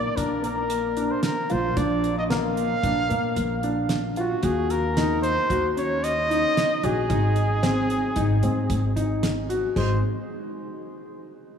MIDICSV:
0, 0, Header, 1, 5, 480
1, 0, Start_track
1, 0, Tempo, 532387
1, 1599, Time_signature, 5, 2, 24, 8
1, 10444, End_track
2, 0, Start_track
2, 0, Title_t, "Trumpet"
2, 0, Program_c, 0, 56
2, 0, Note_on_c, 0, 74, 88
2, 150, Note_on_c, 0, 70, 71
2, 164, Note_off_c, 0, 74, 0
2, 394, Note_off_c, 0, 70, 0
2, 399, Note_on_c, 0, 70, 79
2, 1002, Note_on_c, 0, 72, 72
2, 1016, Note_off_c, 0, 70, 0
2, 1111, Note_off_c, 0, 72, 0
2, 1116, Note_on_c, 0, 70, 74
2, 1367, Note_on_c, 0, 72, 79
2, 1380, Note_off_c, 0, 70, 0
2, 1599, Note_on_c, 0, 74, 89
2, 1613, Note_off_c, 0, 72, 0
2, 1959, Note_off_c, 0, 74, 0
2, 1969, Note_on_c, 0, 75, 83
2, 2021, Note_off_c, 0, 75, 0
2, 2091, Note_on_c, 0, 77, 100
2, 3487, Note_off_c, 0, 77, 0
2, 3782, Note_on_c, 0, 66, 73
2, 4006, Note_on_c, 0, 68, 85
2, 4019, Note_off_c, 0, 66, 0
2, 4243, Note_on_c, 0, 70, 90
2, 4256, Note_off_c, 0, 68, 0
2, 4704, Note_off_c, 0, 70, 0
2, 4709, Note_on_c, 0, 72, 97
2, 5162, Note_off_c, 0, 72, 0
2, 5209, Note_on_c, 0, 73, 88
2, 5447, Note_on_c, 0, 75, 108
2, 5460, Note_off_c, 0, 73, 0
2, 6175, Note_on_c, 0, 68, 85
2, 6189, Note_off_c, 0, 75, 0
2, 8328, Note_off_c, 0, 68, 0
2, 8806, Note_on_c, 0, 72, 70
2, 9026, Note_off_c, 0, 72, 0
2, 10444, End_track
3, 0, Start_track
3, 0, Title_t, "Grand piano"
3, 0, Program_c, 1, 0
3, 153, Note_on_c, 1, 62, 68
3, 306, Note_off_c, 1, 62, 0
3, 382, Note_on_c, 1, 58, 64
3, 692, Note_off_c, 1, 58, 0
3, 873, Note_on_c, 1, 62, 68
3, 1179, Note_off_c, 1, 62, 0
3, 1351, Note_on_c, 1, 65, 65
3, 1506, Note_off_c, 1, 65, 0
3, 1592, Note_on_c, 1, 62, 82
3, 1899, Note_off_c, 1, 62, 0
3, 2073, Note_on_c, 1, 58, 77
3, 2380, Note_off_c, 1, 58, 0
3, 2554, Note_on_c, 1, 62, 71
3, 2708, Note_off_c, 1, 62, 0
3, 2790, Note_on_c, 1, 58, 63
3, 3098, Note_off_c, 1, 58, 0
3, 3279, Note_on_c, 1, 62, 74
3, 3584, Note_off_c, 1, 62, 0
3, 3762, Note_on_c, 1, 65, 73
3, 3914, Note_off_c, 1, 65, 0
3, 3994, Note_on_c, 1, 66, 72
3, 4301, Note_off_c, 1, 66, 0
3, 4481, Note_on_c, 1, 63, 69
3, 4786, Note_off_c, 1, 63, 0
3, 4955, Note_on_c, 1, 66, 72
3, 5110, Note_off_c, 1, 66, 0
3, 5200, Note_on_c, 1, 61, 61
3, 5505, Note_off_c, 1, 61, 0
3, 5682, Note_on_c, 1, 63, 73
3, 5987, Note_off_c, 1, 63, 0
3, 6160, Note_on_c, 1, 66, 67
3, 6313, Note_off_c, 1, 66, 0
3, 6395, Note_on_c, 1, 63, 73
3, 6702, Note_off_c, 1, 63, 0
3, 6877, Note_on_c, 1, 60, 75
3, 7183, Note_off_c, 1, 60, 0
3, 7358, Note_on_c, 1, 63, 70
3, 7511, Note_off_c, 1, 63, 0
3, 7604, Note_on_c, 1, 60, 62
3, 7908, Note_off_c, 1, 60, 0
3, 8080, Note_on_c, 1, 63, 72
3, 8384, Note_off_c, 1, 63, 0
3, 8560, Note_on_c, 1, 66, 72
3, 8713, Note_off_c, 1, 66, 0
3, 8799, Note_on_c, 1, 56, 70
3, 9022, Note_off_c, 1, 56, 0
3, 10444, End_track
4, 0, Start_track
4, 0, Title_t, "Upright bass"
4, 0, Program_c, 2, 32
4, 155, Note_on_c, 2, 34, 78
4, 991, Note_off_c, 2, 34, 0
4, 1363, Note_on_c, 2, 34, 85
4, 1570, Note_off_c, 2, 34, 0
4, 1594, Note_on_c, 2, 34, 86
4, 2432, Note_off_c, 2, 34, 0
4, 2555, Note_on_c, 2, 34, 82
4, 2766, Note_off_c, 2, 34, 0
4, 2798, Note_on_c, 2, 46, 80
4, 3008, Note_off_c, 2, 46, 0
4, 3032, Note_on_c, 2, 34, 84
4, 3871, Note_off_c, 2, 34, 0
4, 3993, Note_on_c, 2, 39, 99
4, 4832, Note_off_c, 2, 39, 0
4, 4961, Note_on_c, 2, 39, 80
4, 5797, Note_off_c, 2, 39, 0
4, 6163, Note_on_c, 2, 34, 91
4, 6371, Note_off_c, 2, 34, 0
4, 6398, Note_on_c, 2, 32, 92
4, 7235, Note_off_c, 2, 32, 0
4, 7364, Note_on_c, 2, 32, 80
4, 7572, Note_off_c, 2, 32, 0
4, 7600, Note_on_c, 2, 44, 82
4, 7810, Note_off_c, 2, 44, 0
4, 7844, Note_on_c, 2, 32, 80
4, 8677, Note_off_c, 2, 32, 0
4, 8803, Note_on_c, 2, 32, 87
4, 9025, Note_off_c, 2, 32, 0
4, 10444, End_track
5, 0, Start_track
5, 0, Title_t, "Drums"
5, 157, Note_on_c, 9, 42, 80
5, 158, Note_on_c, 9, 36, 86
5, 247, Note_off_c, 9, 42, 0
5, 248, Note_off_c, 9, 36, 0
5, 395, Note_on_c, 9, 42, 59
5, 485, Note_off_c, 9, 42, 0
5, 629, Note_on_c, 9, 42, 78
5, 720, Note_off_c, 9, 42, 0
5, 871, Note_on_c, 9, 42, 54
5, 962, Note_off_c, 9, 42, 0
5, 1107, Note_on_c, 9, 38, 98
5, 1107, Note_on_c, 9, 42, 77
5, 1197, Note_off_c, 9, 38, 0
5, 1197, Note_off_c, 9, 42, 0
5, 1349, Note_on_c, 9, 42, 54
5, 1439, Note_off_c, 9, 42, 0
5, 1594, Note_on_c, 9, 42, 69
5, 1595, Note_on_c, 9, 36, 104
5, 1684, Note_off_c, 9, 42, 0
5, 1685, Note_off_c, 9, 36, 0
5, 1838, Note_on_c, 9, 42, 51
5, 1928, Note_off_c, 9, 42, 0
5, 2079, Note_on_c, 9, 38, 102
5, 2079, Note_on_c, 9, 42, 71
5, 2169, Note_off_c, 9, 38, 0
5, 2169, Note_off_c, 9, 42, 0
5, 2319, Note_on_c, 9, 42, 54
5, 2409, Note_off_c, 9, 42, 0
5, 2555, Note_on_c, 9, 36, 96
5, 2557, Note_on_c, 9, 42, 72
5, 2646, Note_off_c, 9, 36, 0
5, 2647, Note_off_c, 9, 42, 0
5, 2799, Note_on_c, 9, 42, 53
5, 2890, Note_off_c, 9, 42, 0
5, 3033, Note_on_c, 9, 42, 78
5, 3123, Note_off_c, 9, 42, 0
5, 3274, Note_on_c, 9, 42, 54
5, 3364, Note_off_c, 9, 42, 0
5, 3509, Note_on_c, 9, 38, 98
5, 3509, Note_on_c, 9, 42, 78
5, 3600, Note_off_c, 9, 38, 0
5, 3600, Note_off_c, 9, 42, 0
5, 3753, Note_on_c, 9, 42, 58
5, 3844, Note_off_c, 9, 42, 0
5, 3991, Note_on_c, 9, 42, 72
5, 3996, Note_on_c, 9, 36, 93
5, 4081, Note_off_c, 9, 42, 0
5, 4086, Note_off_c, 9, 36, 0
5, 4239, Note_on_c, 9, 42, 55
5, 4329, Note_off_c, 9, 42, 0
5, 4480, Note_on_c, 9, 38, 98
5, 4480, Note_on_c, 9, 42, 76
5, 4570, Note_off_c, 9, 38, 0
5, 4570, Note_off_c, 9, 42, 0
5, 4720, Note_on_c, 9, 42, 57
5, 4810, Note_off_c, 9, 42, 0
5, 4959, Note_on_c, 9, 36, 90
5, 4963, Note_on_c, 9, 42, 74
5, 5049, Note_off_c, 9, 36, 0
5, 5053, Note_off_c, 9, 42, 0
5, 5206, Note_on_c, 9, 42, 54
5, 5296, Note_off_c, 9, 42, 0
5, 5444, Note_on_c, 9, 42, 76
5, 5534, Note_off_c, 9, 42, 0
5, 5691, Note_on_c, 9, 38, 30
5, 5691, Note_on_c, 9, 42, 54
5, 5781, Note_off_c, 9, 38, 0
5, 5781, Note_off_c, 9, 42, 0
5, 5926, Note_on_c, 9, 38, 98
5, 5926, Note_on_c, 9, 42, 75
5, 6016, Note_off_c, 9, 38, 0
5, 6016, Note_off_c, 9, 42, 0
5, 6162, Note_on_c, 9, 42, 55
5, 6252, Note_off_c, 9, 42, 0
5, 6400, Note_on_c, 9, 42, 68
5, 6401, Note_on_c, 9, 36, 95
5, 6490, Note_off_c, 9, 42, 0
5, 6491, Note_off_c, 9, 36, 0
5, 6634, Note_on_c, 9, 42, 55
5, 6724, Note_off_c, 9, 42, 0
5, 6880, Note_on_c, 9, 38, 101
5, 6880, Note_on_c, 9, 42, 71
5, 6970, Note_off_c, 9, 38, 0
5, 6970, Note_off_c, 9, 42, 0
5, 7122, Note_on_c, 9, 42, 57
5, 7212, Note_off_c, 9, 42, 0
5, 7356, Note_on_c, 9, 42, 79
5, 7360, Note_on_c, 9, 36, 96
5, 7446, Note_off_c, 9, 42, 0
5, 7450, Note_off_c, 9, 36, 0
5, 7599, Note_on_c, 9, 42, 55
5, 7689, Note_off_c, 9, 42, 0
5, 7842, Note_on_c, 9, 36, 104
5, 7843, Note_on_c, 9, 42, 80
5, 7932, Note_off_c, 9, 36, 0
5, 7933, Note_off_c, 9, 42, 0
5, 8083, Note_on_c, 9, 36, 62
5, 8085, Note_on_c, 9, 42, 59
5, 8173, Note_off_c, 9, 36, 0
5, 8175, Note_off_c, 9, 42, 0
5, 8323, Note_on_c, 9, 38, 101
5, 8323, Note_on_c, 9, 42, 82
5, 8413, Note_off_c, 9, 38, 0
5, 8413, Note_off_c, 9, 42, 0
5, 8566, Note_on_c, 9, 42, 61
5, 8656, Note_off_c, 9, 42, 0
5, 8802, Note_on_c, 9, 36, 88
5, 8807, Note_on_c, 9, 49, 77
5, 8893, Note_off_c, 9, 36, 0
5, 8897, Note_off_c, 9, 49, 0
5, 10444, End_track
0, 0, End_of_file